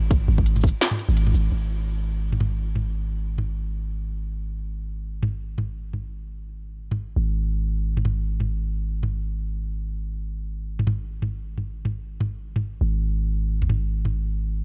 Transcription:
Already playing: G#1
0.11 kick, closed hi-hat
0.28 G#1, mid tom
0.38 kick
0.46 closed hi-hat
0.56 mid tom, shaker
0.61 kick, closed hi-hat, shaker
0.67 closed hi-hat, shaker
0.81 snare, closed hi-hat
0.91 mid tom, shaker
0.99 closed hi-hat
1.09 G#1, shaker
1.17 closed hi-hat
1.27 mid tom
1.34 G#1, closed hi-hat, shaker
1.52 G#1
2.32 mid tom
2.40 mid tom
2.75 mid tom
3.38 mid tom
5.23 mid tom
5.58 mid tom
5.93 mid tom
6.91 mid tom
7.16 G#1
7.97 mid tom
8.05 mid tom
8.40 mid tom
9.03 mid tom
10.79 mid tom
10.87 mid tom
11.22 mid tom
11.58 mid tom
11.85 mid tom
12.20 mid tom
12.56 mid tom
12.81 G#1
13.62 mid tom
13.70 mid tom
14.05 mid tom

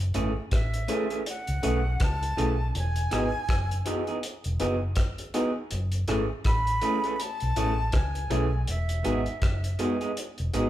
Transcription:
Already playing: F#1
0.14 G#1 E3 A3 C#4 E4 G#4, closed hi-hat
0.51 A1 E5, kick, cross-stick, closed hi-hat
0.74 closed hi-hat
0.88 E3 A3 C#4 E4 G#4, closed hi-hat
1.10 E3 A3 C#4 G#4, closed hi-hat
1.26 F#5, closed hi-hat
1.47 C#2, closed hi-hat
1.63 B1 E3 A3 C#4 E4 G#4, closed hi-hat
1.85 muted clean electric guitar stroke
2.00 C#2 A5, kick, cross-stick, closed hi-hat
2.21 E4 G#4, closed hi-hat
2.37 B1 E3 A3 C#4 E4 G#4, closed hi-hat
2.75 E1 G#5, closed hi-hat
2.96 closed hi-hat
3.11 G#1 E3 B3 D#4 F#4 G#4, cross-stick, closed hi-hat
3.49 F#1, kick, cross-stick, closed hi-hat
3.71 closed hi-hat
3.86 E3 B3 D#4 F#4 G#4, closed hi-hat
4.07 E3 B3 D#4 G#4, closed hi-hat
4.23 closed hi-hat
4.44 E1, closed hi-hat
4.60 F#1 E3 B3 D#4 F#4 G#4, closed hi-hat
4.96 kick, cross-stick, closed hi-hat
5.18 F#4 G#4, closed hi-hat
5.34 E3 B3 D#4 F#4 G#4, closed hi-hat
5.71 F#1, closed hi-hat
5.92 closed hi-hat
6.08 G#1 E3 A3 C#4 E4 G#4, cross-stick, closed hi-hat
6.44 A1 B5, kick, cross-stick, closed hi-hat
6.67 closed hi-hat
6.82 E3 A3 C#4 E4 G#4, closed hi-hat
7.04 E3 A3 C#4 G#4, closed hi-hat
7.16 B5, closed hi-hat
7.22 A5
7.40 B1, closed hi-hat
7.56 A1 E3 A3 C#4 E4 G#4, closed hi-hat
7.78 muted clean electric guitar stroke
7.92 C#2 G#5, kick, cross-stick, closed hi-hat
8.15 E4 G#4, closed hi-hat
8.30 B1 E3 A3 C#4 E4 G#4, closed hi-hat
8.67 E1 E5, closed hi-hat
8.89 closed hi-hat
9.04 G#1 G#3 B3 D#4 F#4 G#4, closed hi-hat
9.26 closed hi-hat
9.42 F#1, kick, cross-stick, closed hi-hat
9.64 closed hi-hat
9.79 G#3 B3 D#4 F#4 G#4, closed hi-hat
10.01 G#3 B3 D#4 G#4, closed hi-hat
10.17 closed hi-hat
10.38 E1, closed hi-hat
10.53 G#1 G#3 B3 D#4 F#4 G#4, closed hi-hat

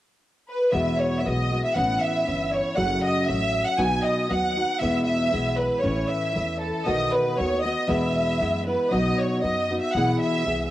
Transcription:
0.49 B4
0.71 E2 B2 E3 G#3 B3 F#4 E5
1.00 C#5
1.18 E5
1.24 B1 E3 G#3 B3 F#4 D#5
1.52 E3 G#3 B3 F#4
1.64 E5
1.75 A1 A2 E3 B3 C#4 E4 F#5
2.01 E5
2.27 G1 E3 B3 C#4 E4
2.53 C#5
2.76 F#1 F#2 C#3 F#3 A3 C#4 F#4 F#5
3.03 D#5
3.26 A1 F#3 A3 C#4 F#4 E5
3.65 F#5
3.78 B1 B2 F#3 B3 D#4 F#4 G#5
4.04 D#5
4.30 D#2 F#3 B3 D#4 F#4 F#5
4.57 B3 D#4 F#4
4.78 E2 B2 E3 G#3 B3 E4 E5
4.83 E2
5.05 E5
5.31 B1 E3 G#3 B3 E4
5.58 B4
5.80 A2 E3 A3 C#4 E4 C#5
5.85 A1
6.08 E5
6.34 E2 E3 A3 C#4 E4
6.61 A4
6.85 B1 B2 D#3 A3 B3 F#4 D#5
7.12 B4
7.37 D#2 D#3 A3 B3 F#4 C#5
7.62 B3 F#4 D#5
7.66 A3
7.88 E2 B2 E3 G#3 B3 E4 E5
8.40 F#2 E3 G#3 B3 E4
8.67 E3 G#3 B3 E4 B4
8.91 B1 B2 F#3 B3 D#4 F#4 D#5
9.20 C#5
9.42 F#2 F#3 B3 D#4 F#4 D#5
9.71 B3 D#4 F#4
9.80 E5
9.93 B1 B2 B3 F#5
9.97 E3 E4 G#4
10.20 E5
10.45 C2 E3 B3 E4 G#4

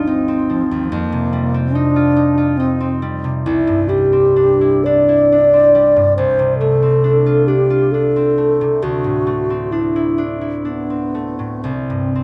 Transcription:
Already playing: G#1 D#2 F3 C4 F4
0.07 C4 D#4
0.28 C4
0.50 F3
0.71 D#2
0.90 F2 A#3
1.12 C3
1.33 G3
1.54 C4
1.74 D4 D#4
1.96 F4
2.16 D#4
2.38 F4
2.57 C4 D#4
2.80 C4
3.02 G3
3.24 C3
3.44 C2 E4
3.67 G2
3.88 G3 G4
4.13 C4
4.36 D4
4.61 E4
4.84 D4 D5
5.09 E4
5.32 D4
5.53 C4
5.75 G3
5.96 G2
6.16 C2 C5
6.39 C3
6.59 A3 A4
6.83 C4
7.04 D4
7.26 F4
7.47 D4 G4
7.70 F4
7.92 D4 A4
8.16 C4
8.38 A3
8.61 C3
8.82 D2 F#4
9.04 A2
9.27 A3
9.50 C4
9.71 D4 E4
9.96 E4
10.18 D4
10.41 E4
10.64 B3 D4
10.90 C4
11.15 A3
11.39 A2
11.63 C2 C4
11.90 G2
12.15 C4

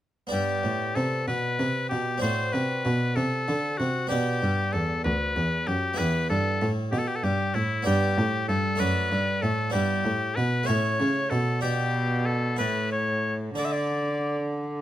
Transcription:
0.27 B3 D4 G4
0.32 G2 G4
0.63 A2
0.95 C3 A4
1.27 B2 B4
1.59 C3
1.89 B2 G4
2.18 C4 D4 F#4
2.22 A2 C5
2.53 C3 B4
2.85 B2
3.16 C3 A4
3.48 D3
3.78 C3 F#4
4.07 B3 D4 G4
4.11 B2
4.43 G2
4.73 E2 A4
5.04 D2 B4
5.36 E2
5.67 F#2 G4
5.94 B3 E4 G4
5.98 E2 B4
6.30 G2 A4
6.62 A2
6.91 B2 G4
6.98 A4
7.08 G4
7.16 A4
7.23 G2 G4
7.54 A2 E4
7.82 G2 B3 D4 G4
7.87 G2
8.18 A2
8.48 G2 A4
8.75 A3 D4 A4 B4
8.80 F#2
9.11 G2
9.41 A2 A4
9.70 G2 B3 D4 E4 G4
9.74 G2
10.05 A2
10.35 B2 B4
10.63 A3 C#4 E4 C#5
10.68 A2
11.00 C#3
11.30 B2 A4
11.61 B2 D4 G4
12.26 A4
12.56 A2 E4 A4 B4
12.92 C#5
13.55 D3 D4 A4 D5
13.65 E5
13.72 D5

